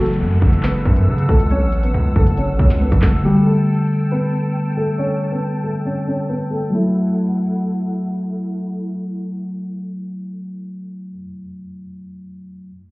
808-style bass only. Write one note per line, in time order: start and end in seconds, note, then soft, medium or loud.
0.00 0.22 F#1 loud
0.20 0.41 F#2 loud
0.42 0.84 F#1 loud
0.85 1.09 F#2 loud
1.07 1.28 C#3 loud
1.29 1.63 C#2 loud
1.61 1.92 A1 loud
1.94 2.15 C#2 loud
2.16 2.50 F#1 loud
2.49 2.59 A1 loud
2.59 2.91 C#2 loud
2.92 3.02 F#1 loud
3.03 3.24 F#1 loud